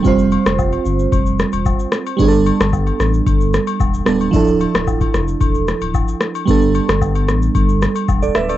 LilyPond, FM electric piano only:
\new Staff \with { instrumentName = "FM electric piano" } { \time 4/4 \key g \mixolydian \tempo 4 = 112 << { r1 | r1 | r1 | r2. r16 <a' d''>16 <b' e''>16 <a' d''>16 | } \\ { <g c' f' c''>1 | <g b d' aes' a'>2.~ <g b d' aes' a'>8 <g b d' a'>8 | <f d' e' a'>1 | <g b d' a'>1 | } >> }